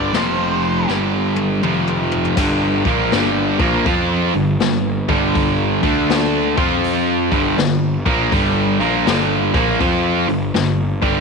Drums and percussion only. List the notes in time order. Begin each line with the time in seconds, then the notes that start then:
0.14 snare, open hi-hat
0.62 open hi-hat
0.89 snare
1.36 high tom
1.63 mid tom
1.87 mid tom
2.11 floor tom
2.25 floor tom
2.37 kick, crash
2.85 kick, open hi-hat
3.12 snare, open hi-hat
3.59 kick, open hi-hat
3.86 kick, open hi-hat
4.34 open hi-hat
4.60 snare, open hi-hat
5.09 kick, open hi-hat
5.35 kick, open hi-hat
5.83 kick, open hi-hat
6.10 snare, open hi-hat
6.58 kick, open hi-hat
6.84 open hi-hat
7.32 kick, open hi-hat
7.58 snare, open hi-hat
8.06 kick, open hi-hat
8.32 kick, open hi-hat
8.80 open hi-hat
9.07 snare, open hi-hat
9.54 kick, open hi-hat
9.81 kick, open hi-hat
10.29 open hi-hat
10.54 snare, open hi-hat
11.02 kick, open hi-hat